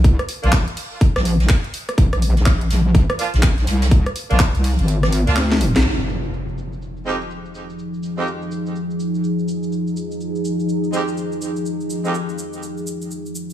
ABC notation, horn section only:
X:1
M:4/4
L:1/16
Q:"Swing 16ths" 1/4=124
K:Fdor
V:1 name="Horn section"
z3 [F,B,DF] z12 | z8 z2 [F,B,DF] z4 z | z3 [F,B,DF] z6 z [F,B,DF] z4 | z8 z2 [F,,A,CEG] z4 z |
z3 [F,,A,CEG] z12 | z8 z2 [F,,A,CEG] z4 z | z3 [F,,A,CEG] z12 |]